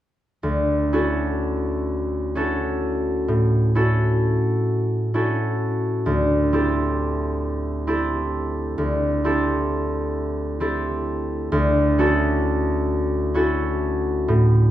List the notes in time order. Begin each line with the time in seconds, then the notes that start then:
0.43 D2
0.93 C#4 E4 F#4 A4
2.35 C#4 E4 F#4 A4
3.28 A2
3.75 C#4 E4 F#4 A4
5.14 C#4 E4 F#4 A4
6.06 D2
6.53 C4 E4 G4 A4
7.87 C4 E4 G4 A4
8.78 D2
9.24 C4 E4 G4 A4
10.60 C4 E4 G4 A4
11.52 D2
11.98 C#4 E4 F#4 A4
13.34 C#4 E4 F#4 A4
14.28 A2